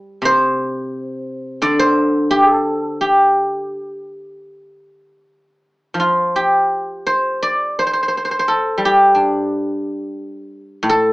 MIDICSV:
0, 0, Header, 1, 2, 480
1, 0, Start_track
1, 0, Tempo, 703400
1, 172, Time_signature, 4, 2, 24, 8
1, 2574, Tempo, 723764
1, 4974, Tempo, 692841
1, 7563, End_track
2, 0, Start_track
2, 0, Title_t, "Guzheng"
2, 0, Program_c, 0, 107
2, 0, Note_on_c, 0, 55, 50
2, 0, Note_on_c, 0, 77, 90
2, 0, Note_on_c, 0, 79, 80
2, 131, Note_off_c, 0, 77, 0
2, 148, Note_on_c, 0, 48, 51
2, 173, Note_on_c, 0, 72, 101
2, 281, Note_off_c, 0, 79, 0
2, 635, Note_off_c, 0, 55, 0
2, 1103, Note_on_c, 0, 50, 57
2, 1106, Note_on_c, 0, 74, 99
2, 1120, Note_off_c, 0, 48, 0
2, 1222, Note_off_c, 0, 72, 0
2, 1224, Note_on_c, 0, 72, 104
2, 1574, Note_on_c, 0, 67, 85
2, 1717, Note_off_c, 0, 67, 0
2, 1717, Note_on_c, 0, 69, 85
2, 2053, Note_on_c, 0, 67, 71
2, 2366, Note_off_c, 0, 74, 0
2, 2561, Note_off_c, 0, 50, 0
2, 2576, Note_off_c, 0, 72, 0
2, 3056, Note_off_c, 0, 69, 0
2, 3629, Note_off_c, 0, 67, 0
2, 4013, Note_on_c, 0, 53, 50
2, 4050, Note_on_c, 0, 65, 65
2, 4289, Note_on_c, 0, 67, 68
2, 4758, Note_on_c, 0, 72, 75
2, 4998, Note_on_c, 0, 74, 78
2, 5247, Note_off_c, 0, 72, 0
2, 5250, Note_on_c, 0, 72, 71
2, 5301, Note_off_c, 0, 72, 0
2, 5303, Note_on_c, 0, 72, 54
2, 5347, Note_off_c, 0, 72, 0
2, 5350, Note_on_c, 0, 72, 54
2, 5412, Note_off_c, 0, 72, 0
2, 5415, Note_on_c, 0, 72, 48
2, 5449, Note_off_c, 0, 72, 0
2, 5451, Note_off_c, 0, 53, 0
2, 5452, Note_on_c, 0, 72, 54
2, 5513, Note_off_c, 0, 72, 0
2, 5516, Note_on_c, 0, 72, 45
2, 5565, Note_off_c, 0, 72, 0
2, 5568, Note_on_c, 0, 72, 51
2, 5609, Note_off_c, 0, 72, 0
2, 5611, Note_on_c, 0, 72, 51
2, 5665, Note_off_c, 0, 72, 0
2, 5668, Note_on_c, 0, 72, 63
2, 5728, Note_on_c, 0, 69, 67
2, 5759, Note_off_c, 0, 65, 0
2, 5889, Note_off_c, 0, 67, 0
2, 5934, Note_on_c, 0, 55, 52
2, 5986, Note_on_c, 0, 67, 81
2, 6191, Note_on_c, 0, 62, 43
2, 6276, Note_off_c, 0, 74, 0
2, 7040, Note_off_c, 0, 72, 0
2, 7146, Note_off_c, 0, 62, 0
2, 7248, Note_off_c, 0, 69, 0
2, 7355, Note_on_c, 0, 45, 65
2, 7374, Note_off_c, 0, 55, 0
2, 7402, Note_on_c, 0, 69, 90
2, 7563, Note_off_c, 0, 45, 0
2, 7563, Note_off_c, 0, 67, 0
2, 7563, Note_off_c, 0, 69, 0
2, 7563, End_track
0, 0, End_of_file